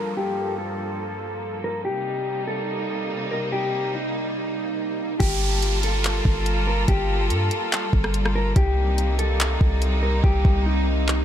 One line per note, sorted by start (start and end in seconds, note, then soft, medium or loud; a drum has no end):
0.00 1.81 G2 medium
0.00 1.81 F3 medium
0.00 1.81 A#3 medium
0.00 1.81 A4 medium
0.00 0.16 A#4 medium
0.00 downlifter medium
0.17 0.56 G4 loud
0.58 1.60 A4 medium
1.64 1.84 A#4 medium
1.84 5.17 C3 medium
1.84 5.17 G3 medium
1.84 5.17 A#3 medium
1.84 5.17 D#4 medium
1.84 2.44 G4 medium
2.47 3.27 A4 medium
3.31 3.51 A#4 medium
3.52 3.92 G4 loud
3.95 5.17 D#4 medium
5.20 6.21 G1 loud
5.20 11.25 G3 medium
5.20 8.53 A#3 medium
5.20 8.53 F4 medium
5.20 5.79 G4 loud
5.20 8.53 A4 medium
5.20 kick loud
5.20 closed hi-hat medium
5.20 downlifter medium
5.62 closed hi-hat medium
5.83 6.64 A4 medium
5.83 closed hi-hat medium
6.04 clap loud
6.04 closed hi-hat medium
6.25 6.86 G1 loud
6.25 kick loud
6.46 closed hi-hat medium
6.67 6.87 A#4 medium
6.88 7.32 G1 loud
6.88 7.28 G4 loud
6.88 kick loud
6.88 closed hi-hat medium
7.30 7.50 G2 loud
7.30 8.31 A4 medium
7.30 closed hi-hat medium
7.51 closed hi-hat medium
7.72 clap loud
7.72 closed hi-hat medium
7.93 8.54 G1 loud
7.93 kick loud
8.04 cross-stick loud
8.14 closed hi-hat medium
8.25 cross-stick loud
8.36 8.55 A#4 medium
8.56 9.57 C2 loud
8.56 11.25 C3 medium
8.56 11.25 A#3 medium
8.56 11.25 D#4 medium
8.56 9.15 G4 loud
8.56 kick loud
8.56 closed hi-hat medium
8.98 closed hi-hat medium
9.19 9.99 A4 medium
9.19 closed hi-hat medium
9.40 clap loud
9.40 closed hi-hat medium
9.61 10.21 C2 loud
9.61 kick loud
9.82 closed hi-hat medium
10.03 10.23 A#4 medium
10.24 10.44 C2 loud
10.24 10.63 G4 loud
10.24 kick loud
10.45 11.25 C2 loud
10.45 kick loud
10.66 11.25 D#4 medium
11.08 clap loud